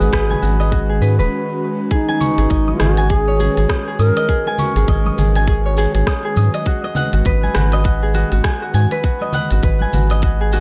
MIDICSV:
0, 0, Header, 1, 6, 480
1, 0, Start_track
1, 0, Key_signature, 5, "minor"
1, 0, Tempo, 594059
1, 1544, Time_signature, 4, 2, 24, 8
1, 8566, End_track
2, 0, Start_track
2, 0, Title_t, "Harp"
2, 0, Program_c, 0, 46
2, 0, Note_on_c, 0, 68, 72
2, 0, Note_on_c, 0, 71, 101
2, 0, Note_on_c, 0, 75, 89
2, 0, Note_on_c, 0, 78, 94
2, 0, Note_on_c, 0, 80, 76
2, 4, Note_on_c, 0, 66, 70
2, 100, Note_off_c, 0, 71, 0
2, 103, Note_on_c, 0, 71, 84
2, 242, Note_off_c, 0, 80, 0
2, 245, Note_on_c, 0, 80, 73
2, 338, Note_off_c, 0, 66, 0
2, 341, Note_on_c, 0, 66, 73
2, 480, Note_off_c, 0, 75, 0
2, 483, Note_on_c, 0, 75, 99
2, 578, Note_off_c, 0, 66, 0
2, 581, Note_on_c, 0, 66, 78
2, 645, Note_off_c, 0, 68, 0
2, 723, Note_on_c, 0, 68, 71
2, 817, Note_off_c, 0, 71, 0
2, 821, Note_on_c, 0, 71, 79
2, 958, Note_off_c, 0, 71, 0
2, 962, Note_on_c, 0, 71, 72
2, 1160, Note_off_c, 0, 78, 0
2, 1457, Note_off_c, 0, 80, 0
2, 1541, Note_off_c, 0, 68, 0
2, 1544, Note_on_c, 0, 68, 82
2, 1685, Note_on_c, 0, 80, 96
2, 1781, Note_on_c, 0, 85, 94
2, 1921, Note_off_c, 0, 68, 0
2, 1924, Note_on_c, 0, 68, 74
2, 1925, Note_off_c, 0, 75, 0
2, 2022, Note_on_c, 0, 75, 83
2, 2164, Note_on_c, 0, 87, 69
2, 2260, Note_off_c, 0, 68, 0
2, 2263, Note_on_c, 0, 68, 77
2, 2403, Note_off_c, 0, 80, 0
2, 2407, Note_on_c, 0, 80, 99
2, 2502, Note_off_c, 0, 68, 0
2, 2505, Note_on_c, 0, 68, 78
2, 2550, Note_off_c, 0, 66, 0
2, 2617, Note_off_c, 0, 71, 0
2, 2649, Note_on_c, 0, 73, 73
2, 2745, Note_off_c, 0, 68, 0
2, 2748, Note_on_c, 0, 68, 105
2, 2800, Note_off_c, 0, 85, 0
2, 2885, Note_off_c, 0, 68, 0
2, 2888, Note_on_c, 0, 68, 78
2, 2984, Note_off_c, 0, 87, 0
2, 2987, Note_on_c, 0, 87, 81
2, 3128, Note_off_c, 0, 68, 0
2, 3131, Note_on_c, 0, 68, 75
2, 3224, Note_off_c, 0, 87, 0
2, 3227, Note_on_c, 0, 87, 84
2, 3364, Note_off_c, 0, 75, 0
2, 3368, Note_on_c, 0, 75, 98
2, 3466, Note_off_c, 0, 68, 0
2, 3469, Note_on_c, 0, 68, 80
2, 3609, Note_off_c, 0, 80, 0
2, 3612, Note_on_c, 0, 80, 103
2, 3708, Note_on_c, 0, 85, 97
2, 3847, Note_off_c, 0, 68, 0
2, 3851, Note_on_c, 0, 68, 69
2, 3947, Note_off_c, 0, 75, 0
2, 3950, Note_on_c, 0, 75, 85
2, 4088, Note_off_c, 0, 87, 0
2, 4091, Note_on_c, 0, 87, 74
2, 4187, Note_off_c, 0, 68, 0
2, 4191, Note_on_c, 0, 68, 75
2, 4194, Note_off_c, 0, 73, 0
2, 4329, Note_off_c, 0, 80, 0
2, 4332, Note_on_c, 0, 80, 106
2, 4428, Note_off_c, 0, 68, 0
2, 4431, Note_on_c, 0, 68, 87
2, 4570, Note_on_c, 0, 73, 74
2, 4664, Note_off_c, 0, 68, 0
2, 4667, Note_on_c, 0, 68, 106
2, 4727, Note_off_c, 0, 85, 0
2, 4805, Note_off_c, 0, 68, 0
2, 4808, Note_on_c, 0, 68, 76
2, 4904, Note_off_c, 0, 87, 0
2, 4907, Note_on_c, 0, 87, 85
2, 5045, Note_off_c, 0, 68, 0
2, 5048, Note_on_c, 0, 68, 74
2, 5144, Note_off_c, 0, 87, 0
2, 5148, Note_on_c, 0, 87, 80
2, 5283, Note_off_c, 0, 75, 0
2, 5286, Note_on_c, 0, 75, 100
2, 5387, Note_on_c, 0, 66, 86
2, 5524, Note_off_c, 0, 75, 0
2, 5527, Note_on_c, 0, 75, 95
2, 5544, Note_off_c, 0, 80, 0
2, 5625, Note_on_c, 0, 78, 93
2, 5761, Note_off_c, 0, 66, 0
2, 5764, Note_on_c, 0, 66, 73
2, 5866, Note_on_c, 0, 71, 89
2, 6005, Note_on_c, 0, 80, 76
2, 6099, Note_off_c, 0, 87, 0
2, 6100, Note_off_c, 0, 66, 0
2, 6103, Note_on_c, 0, 66, 79
2, 6114, Note_off_c, 0, 73, 0
2, 6243, Note_off_c, 0, 75, 0
2, 6247, Note_on_c, 0, 75, 102
2, 6340, Note_off_c, 0, 66, 0
2, 6344, Note_on_c, 0, 66, 85
2, 6482, Note_off_c, 0, 68, 0
2, 6485, Note_on_c, 0, 68, 72
2, 6578, Note_off_c, 0, 66, 0
2, 6581, Note_on_c, 0, 66, 100
2, 6719, Note_off_c, 0, 66, 0
2, 6723, Note_on_c, 0, 66, 76
2, 6817, Note_off_c, 0, 80, 0
2, 6820, Note_on_c, 0, 80, 83
2, 6924, Note_off_c, 0, 78, 0
2, 6962, Note_off_c, 0, 66, 0
2, 6965, Note_on_c, 0, 66, 74
2, 7061, Note_off_c, 0, 80, 0
2, 7064, Note_on_c, 0, 80, 78
2, 7203, Note_off_c, 0, 71, 0
2, 7206, Note_on_c, 0, 71, 93
2, 7303, Note_off_c, 0, 66, 0
2, 7306, Note_on_c, 0, 66, 79
2, 7443, Note_off_c, 0, 75, 0
2, 7447, Note_on_c, 0, 75, 95
2, 7546, Note_on_c, 0, 78, 95
2, 7688, Note_off_c, 0, 66, 0
2, 7691, Note_on_c, 0, 66, 73
2, 7784, Note_off_c, 0, 71, 0
2, 7787, Note_on_c, 0, 71, 80
2, 7928, Note_off_c, 0, 80, 0
2, 7932, Note_on_c, 0, 80, 74
2, 8026, Note_off_c, 0, 66, 0
2, 8029, Note_on_c, 0, 66, 77
2, 8165, Note_off_c, 0, 75, 0
2, 8168, Note_on_c, 0, 75, 98
2, 8265, Note_off_c, 0, 66, 0
2, 8268, Note_on_c, 0, 66, 81
2, 8322, Note_off_c, 0, 68, 0
2, 8410, Note_on_c, 0, 68, 75
2, 8505, Note_off_c, 0, 66, 0
2, 8508, Note_on_c, 0, 66, 101
2, 8566, Note_off_c, 0, 66, 0
2, 8566, Note_off_c, 0, 68, 0
2, 8566, Note_off_c, 0, 71, 0
2, 8566, Note_off_c, 0, 75, 0
2, 8566, Note_off_c, 0, 78, 0
2, 8566, Note_off_c, 0, 80, 0
2, 8566, End_track
3, 0, Start_track
3, 0, Title_t, "Bansuri"
3, 0, Program_c, 1, 73
3, 0, Note_on_c, 1, 68, 115
3, 1030, Note_off_c, 1, 68, 0
3, 1553, Note_on_c, 1, 63, 96
3, 2263, Note_on_c, 1, 66, 94
3, 2275, Note_off_c, 1, 63, 0
3, 2503, Note_on_c, 1, 68, 110
3, 2515, Note_off_c, 1, 66, 0
3, 2984, Note_off_c, 1, 68, 0
3, 3224, Note_on_c, 1, 70, 117
3, 3672, Note_off_c, 1, 70, 0
3, 8566, End_track
4, 0, Start_track
4, 0, Title_t, "Analog synth pad"
4, 0, Program_c, 2, 89
4, 0, Note_on_c, 2, 51, 79
4, 0, Note_on_c, 2, 56, 95
4, 0, Note_on_c, 2, 61, 76
4, 0, Note_on_c, 2, 66, 76
4, 0, Note_on_c, 2, 71, 74
4, 5376, Note_off_c, 2, 51, 0
4, 5386, Note_on_c, 2, 51, 93
4, 8566, Note_off_c, 2, 51, 0
4, 8566, Note_off_c, 2, 56, 0
4, 8566, Note_off_c, 2, 61, 0
4, 8566, Note_off_c, 2, 66, 0
4, 8566, Note_off_c, 2, 71, 0
4, 8566, End_track
5, 0, Start_track
5, 0, Title_t, "Analog synth bass"
5, 0, Program_c, 3, 38
5, 6, Note_on_c, 3, 32, 98
5, 76, Note_off_c, 3, 32, 0
5, 102, Note_on_c, 3, 32, 85
5, 287, Note_off_c, 3, 32, 0
5, 343, Note_on_c, 3, 32, 92
5, 818, Note_off_c, 3, 32, 0
5, 822, Note_on_c, 3, 44, 101
5, 962, Note_on_c, 3, 27, 109
5, 974, Note_off_c, 3, 44, 0
5, 1034, Note_off_c, 3, 27, 0
5, 1923, Note_on_c, 3, 32, 100
5, 1994, Note_off_c, 3, 32, 0
5, 2025, Note_on_c, 3, 32, 82
5, 2209, Note_off_c, 3, 32, 0
5, 2265, Note_on_c, 3, 32, 96
5, 2821, Note_off_c, 3, 32, 0
5, 2887, Note_on_c, 3, 32, 80
5, 2956, Note_off_c, 3, 32, 0
5, 3225, Note_on_c, 3, 44, 97
5, 3326, Note_off_c, 3, 44, 0
5, 3845, Note_on_c, 3, 32, 100
5, 3915, Note_off_c, 3, 32, 0
5, 3941, Note_on_c, 3, 32, 87
5, 4127, Note_off_c, 3, 32, 0
5, 4186, Note_on_c, 3, 32, 96
5, 4742, Note_off_c, 3, 32, 0
5, 4804, Note_on_c, 3, 32, 80
5, 4875, Note_off_c, 3, 32, 0
5, 5145, Note_on_c, 3, 44, 104
5, 5246, Note_off_c, 3, 44, 0
5, 5762, Note_on_c, 3, 32, 100
5, 5834, Note_off_c, 3, 32, 0
5, 5864, Note_on_c, 3, 32, 88
5, 6048, Note_off_c, 3, 32, 0
5, 6104, Note_on_c, 3, 32, 92
5, 6661, Note_off_c, 3, 32, 0
5, 6723, Note_on_c, 3, 32, 81
5, 6794, Note_off_c, 3, 32, 0
5, 7062, Note_on_c, 3, 44, 98
5, 7165, Note_off_c, 3, 44, 0
5, 7686, Note_on_c, 3, 32, 97
5, 7756, Note_off_c, 3, 32, 0
5, 7783, Note_on_c, 3, 32, 86
5, 7967, Note_off_c, 3, 32, 0
5, 8026, Note_on_c, 3, 32, 99
5, 8566, Note_off_c, 3, 32, 0
5, 8566, End_track
6, 0, Start_track
6, 0, Title_t, "Drums"
6, 10, Note_on_c, 9, 82, 42
6, 91, Note_off_c, 9, 82, 0
6, 102, Note_on_c, 9, 36, 99
6, 107, Note_on_c, 9, 37, 98
6, 109, Note_on_c, 9, 82, 34
6, 183, Note_off_c, 9, 36, 0
6, 188, Note_off_c, 9, 37, 0
6, 190, Note_off_c, 9, 82, 0
6, 249, Note_on_c, 9, 63, 69
6, 255, Note_on_c, 9, 64, 77
6, 330, Note_off_c, 9, 63, 0
6, 336, Note_off_c, 9, 64, 0
6, 347, Note_on_c, 9, 82, 70
6, 428, Note_off_c, 9, 82, 0
6, 489, Note_on_c, 9, 82, 38
6, 491, Note_on_c, 9, 63, 34
6, 569, Note_off_c, 9, 82, 0
6, 572, Note_off_c, 9, 63, 0
6, 582, Note_on_c, 9, 36, 95
6, 587, Note_on_c, 9, 82, 30
6, 663, Note_off_c, 9, 36, 0
6, 668, Note_off_c, 9, 82, 0
6, 826, Note_on_c, 9, 82, 74
6, 906, Note_off_c, 9, 82, 0
6, 966, Note_on_c, 9, 82, 39
6, 1047, Note_off_c, 9, 82, 0
6, 1542, Note_on_c, 9, 42, 49
6, 1544, Note_on_c, 9, 36, 106
6, 1544, Note_on_c, 9, 82, 34
6, 1623, Note_off_c, 9, 42, 0
6, 1624, Note_off_c, 9, 36, 0
6, 1625, Note_off_c, 9, 82, 0
6, 1690, Note_on_c, 9, 62, 55
6, 1771, Note_off_c, 9, 62, 0
6, 1784, Note_on_c, 9, 82, 74
6, 1785, Note_on_c, 9, 64, 90
6, 1865, Note_off_c, 9, 82, 0
6, 1866, Note_off_c, 9, 64, 0
6, 1924, Note_on_c, 9, 42, 54
6, 1926, Note_on_c, 9, 82, 45
6, 2005, Note_off_c, 9, 42, 0
6, 2007, Note_off_c, 9, 82, 0
6, 2021, Note_on_c, 9, 42, 50
6, 2023, Note_on_c, 9, 82, 34
6, 2024, Note_on_c, 9, 36, 101
6, 2102, Note_off_c, 9, 42, 0
6, 2104, Note_off_c, 9, 82, 0
6, 2105, Note_off_c, 9, 36, 0
6, 2170, Note_on_c, 9, 63, 73
6, 2251, Note_off_c, 9, 63, 0
6, 2260, Note_on_c, 9, 37, 77
6, 2262, Note_on_c, 9, 82, 77
6, 2275, Note_on_c, 9, 64, 91
6, 2341, Note_off_c, 9, 37, 0
6, 2343, Note_off_c, 9, 82, 0
6, 2356, Note_off_c, 9, 64, 0
6, 2402, Note_on_c, 9, 42, 58
6, 2404, Note_on_c, 9, 82, 45
6, 2483, Note_off_c, 9, 42, 0
6, 2485, Note_off_c, 9, 82, 0
6, 2503, Note_on_c, 9, 42, 45
6, 2505, Note_on_c, 9, 36, 101
6, 2505, Note_on_c, 9, 82, 33
6, 2584, Note_off_c, 9, 42, 0
6, 2585, Note_off_c, 9, 82, 0
6, 2586, Note_off_c, 9, 36, 0
6, 2745, Note_on_c, 9, 82, 82
6, 2748, Note_on_c, 9, 62, 36
6, 2748, Note_on_c, 9, 63, 67
6, 2826, Note_off_c, 9, 82, 0
6, 2829, Note_off_c, 9, 62, 0
6, 2829, Note_off_c, 9, 63, 0
6, 2888, Note_on_c, 9, 42, 53
6, 2888, Note_on_c, 9, 63, 35
6, 2889, Note_on_c, 9, 82, 39
6, 2968, Note_off_c, 9, 42, 0
6, 2969, Note_off_c, 9, 63, 0
6, 2970, Note_off_c, 9, 82, 0
6, 2984, Note_on_c, 9, 36, 99
6, 2986, Note_on_c, 9, 37, 84
6, 2986, Note_on_c, 9, 42, 44
6, 2988, Note_on_c, 9, 82, 35
6, 3065, Note_off_c, 9, 36, 0
6, 3067, Note_off_c, 9, 37, 0
6, 3067, Note_off_c, 9, 42, 0
6, 3069, Note_off_c, 9, 82, 0
6, 3226, Note_on_c, 9, 82, 74
6, 3307, Note_off_c, 9, 82, 0
6, 3368, Note_on_c, 9, 42, 55
6, 3370, Note_on_c, 9, 82, 42
6, 3371, Note_on_c, 9, 62, 49
6, 3449, Note_off_c, 9, 42, 0
6, 3450, Note_off_c, 9, 82, 0
6, 3451, Note_off_c, 9, 62, 0
6, 3464, Note_on_c, 9, 36, 101
6, 3466, Note_on_c, 9, 42, 46
6, 3468, Note_on_c, 9, 82, 33
6, 3545, Note_off_c, 9, 36, 0
6, 3547, Note_off_c, 9, 42, 0
6, 3549, Note_off_c, 9, 82, 0
6, 3610, Note_on_c, 9, 62, 52
6, 3690, Note_off_c, 9, 62, 0
6, 3703, Note_on_c, 9, 64, 93
6, 3705, Note_on_c, 9, 82, 80
6, 3784, Note_off_c, 9, 64, 0
6, 3786, Note_off_c, 9, 82, 0
6, 3848, Note_on_c, 9, 42, 55
6, 3849, Note_on_c, 9, 82, 46
6, 3928, Note_off_c, 9, 42, 0
6, 3930, Note_off_c, 9, 82, 0
6, 3943, Note_on_c, 9, 42, 46
6, 3944, Note_on_c, 9, 36, 114
6, 3945, Note_on_c, 9, 82, 35
6, 4024, Note_off_c, 9, 42, 0
6, 4025, Note_off_c, 9, 36, 0
6, 4026, Note_off_c, 9, 82, 0
6, 4086, Note_on_c, 9, 63, 83
6, 4167, Note_off_c, 9, 63, 0
6, 4184, Note_on_c, 9, 64, 89
6, 4187, Note_on_c, 9, 82, 78
6, 4265, Note_off_c, 9, 64, 0
6, 4268, Note_off_c, 9, 82, 0
6, 4327, Note_on_c, 9, 42, 55
6, 4329, Note_on_c, 9, 82, 43
6, 4408, Note_off_c, 9, 42, 0
6, 4410, Note_off_c, 9, 82, 0
6, 4423, Note_on_c, 9, 42, 42
6, 4424, Note_on_c, 9, 36, 101
6, 4424, Note_on_c, 9, 82, 32
6, 4503, Note_off_c, 9, 42, 0
6, 4505, Note_off_c, 9, 36, 0
6, 4505, Note_off_c, 9, 82, 0
6, 4664, Note_on_c, 9, 82, 90
6, 4745, Note_off_c, 9, 82, 0
6, 4805, Note_on_c, 9, 42, 52
6, 4807, Note_on_c, 9, 82, 39
6, 4886, Note_off_c, 9, 42, 0
6, 4888, Note_off_c, 9, 82, 0
6, 4903, Note_on_c, 9, 37, 82
6, 4903, Note_on_c, 9, 42, 46
6, 4904, Note_on_c, 9, 36, 102
6, 4905, Note_on_c, 9, 82, 34
6, 4984, Note_off_c, 9, 37, 0
6, 4984, Note_off_c, 9, 42, 0
6, 4985, Note_off_c, 9, 36, 0
6, 4986, Note_off_c, 9, 82, 0
6, 5139, Note_on_c, 9, 62, 54
6, 5144, Note_on_c, 9, 63, 75
6, 5144, Note_on_c, 9, 82, 76
6, 5220, Note_off_c, 9, 62, 0
6, 5225, Note_off_c, 9, 63, 0
6, 5225, Note_off_c, 9, 82, 0
6, 5285, Note_on_c, 9, 42, 54
6, 5286, Note_on_c, 9, 82, 43
6, 5365, Note_off_c, 9, 42, 0
6, 5367, Note_off_c, 9, 82, 0
6, 5380, Note_on_c, 9, 42, 43
6, 5382, Note_on_c, 9, 82, 35
6, 5383, Note_on_c, 9, 36, 101
6, 5461, Note_off_c, 9, 42, 0
6, 5463, Note_off_c, 9, 82, 0
6, 5464, Note_off_c, 9, 36, 0
6, 5525, Note_on_c, 9, 62, 49
6, 5606, Note_off_c, 9, 62, 0
6, 5616, Note_on_c, 9, 64, 99
6, 5621, Note_on_c, 9, 82, 85
6, 5697, Note_off_c, 9, 64, 0
6, 5702, Note_off_c, 9, 82, 0
6, 5762, Note_on_c, 9, 42, 55
6, 5764, Note_on_c, 9, 82, 44
6, 5843, Note_off_c, 9, 42, 0
6, 5845, Note_off_c, 9, 82, 0
6, 5860, Note_on_c, 9, 42, 46
6, 5861, Note_on_c, 9, 82, 35
6, 5863, Note_on_c, 9, 36, 110
6, 5941, Note_off_c, 9, 42, 0
6, 5942, Note_off_c, 9, 82, 0
6, 5944, Note_off_c, 9, 36, 0
6, 6007, Note_on_c, 9, 63, 71
6, 6087, Note_off_c, 9, 63, 0
6, 6097, Note_on_c, 9, 37, 78
6, 6099, Note_on_c, 9, 82, 75
6, 6102, Note_on_c, 9, 64, 93
6, 6178, Note_off_c, 9, 37, 0
6, 6180, Note_off_c, 9, 82, 0
6, 6183, Note_off_c, 9, 64, 0
6, 6239, Note_on_c, 9, 42, 52
6, 6241, Note_on_c, 9, 82, 42
6, 6320, Note_off_c, 9, 42, 0
6, 6322, Note_off_c, 9, 82, 0
6, 6337, Note_on_c, 9, 42, 42
6, 6339, Note_on_c, 9, 82, 33
6, 6343, Note_on_c, 9, 36, 113
6, 6418, Note_off_c, 9, 42, 0
6, 6420, Note_off_c, 9, 82, 0
6, 6423, Note_off_c, 9, 36, 0
6, 6578, Note_on_c, 9, 63, 66
6, 6579, Note_on_c, 9, 82, 86
6, 6580, Note_on_c, 9, 62, 34
6, 6659, Note_off_c, 9, 63, 0
6, 6660, Note_off_c, 9, 82, 0
6, 6661, Note_off_c, 9, 62, 0
6, 6721, Note_on_c, 9, 42, 51
6, 6723, Note_on_c, 9, 82, 41
6, 6729, Note_on_c, 9, 63, 41
6, 6802, Note_off_c, 9, 42, 0
6, 6804, Note_off_c, 9, 82, 0
6, 6810, Note_off_c, 9, 63, 0
6, 6820, Note_on_c, 9, 37, 81
6, 6820, Note_on_c, 9, 42, 45
6, 6822, Note_on_c, 9, 82, 36
6, 6823, Note_on_c, 9, 36, 104
6, 6901, Note_off_c, 9, 37, 0
6, 6901, Note_off_c, 9, 42, 0
6, 6903, Note_off_c, 9, 36, 0
6, 6903, Note_off_c, 9, 82, 0
6, 7060, Note_on_c, 9, 82, 74
6, 7141, Note_off_c, 9, 82, 0
6, 7202, Note_on_c, 9, 42, 52
6, 7204, Note_on_c, 9, 62, 42
6, 7204, Note_on_c, 9, 82, 46
6, 7283, Note_off_c, 9, 42, 0
6, 7284, Note_off_c, 9, 62, 0
6, 7284, Note_off_c, 9, 82, 0
6, 7302, Note_on_c, 9, 42, 41
6, 7303, Note_on_c, 9, 36, 108
6, 7304, Note_on_c, 9, 82, 35
6, 7383, Note_off_c, 9, 42, 0
6, 7384, Note_off_c, 9, 36, 0
6, 7384, Note_off_c, 9, 82, 0
6, 7443, Note_on_c, 9, 62, 54
6, 7523, Note_off_c, 9, 62, 0
6, 7535, Note_on_c, 9, 64, 93
6, 7540, Note_on_c, 9, 82, 81
6, 7616, Note_off_c, 9, 64, 0
6, 7621, Note_off_c, 9, 82, 0
6, 7681, Note_on_c, 9, 42, 50
6, 7683, Note_on_c, 9, 82, 43
6, 7762, Note_off_c, 9, 42, 0
6, 7764, Note_off_c, 9, 82, 0
6, 7780, Note_on_c, 9, 42, 43
6, 7781, Note_on_c, 9, 82, 36
6, 7783, Note_on_c, 9, 36, 115
6, 7860, Note_off_c, 9, 42, 0
6, 7862, Note_off_c, 9, 82, 0
6, 7864, Note_off_c, 9, 36, 0
6, 7925, Note_on_c, 9, 63, 74
6, 8006, Note_off_c, 9, 63, 0
6, 8023, Note_on_c, 9, 82, 81
6, 8027, Note_on_c, 9, 64, 101
6, 8103, Note_off_c, 9, 82, 0
6, 8108, Note_off_c, 9, 64, 0
6, 8162, Note_on_c, 9, 42, 50
6, 8163, Note_on_c, 9, 82, 48
6, 8242, Note_off_c, 9, 42, 0
6, 8244, Note_off_c, 9, 82, 0
6, 8259, Note_on_c, 9, 42, 40
6, 8261, Note_on_c, 9, 82, 32
6, 8264, Note_on_c, 9, 36, 101
6, 8340, Note_off_c, 9, 42, 0
6, 8341, Note_off_c, 9, 82, 0
6, 8345, Note_off_c, 9, 36, 0
6, 8502, Note_on_c, 9, 82, 85
6, 8566, Note_off_c, 9, 82, 0
6, 8566, End_track
0, 0, End_of_file